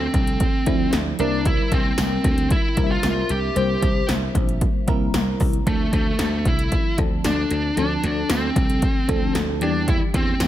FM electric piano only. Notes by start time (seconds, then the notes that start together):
Already playing: F3 A3 C4 D4 A4
0.66 F3 A3 C4 D4 E4
1.19 G3 A#3 C4 E4 A#4
2.77 G3 A#3 C4 D4 A#4
2.84 E5
3.55 G3 A#3 C4 E4 C5
4.87 G3 A#3 C4 E4 A#4
5.66 F3 A3 C4 D4 A4
6.98 F3 A3 C4 D4 A4
7.77 F3 A3 C4 D4 A4
9.08 F3 A3 C4 D4 A4
9.61 E3 G3 A#3 D4 G4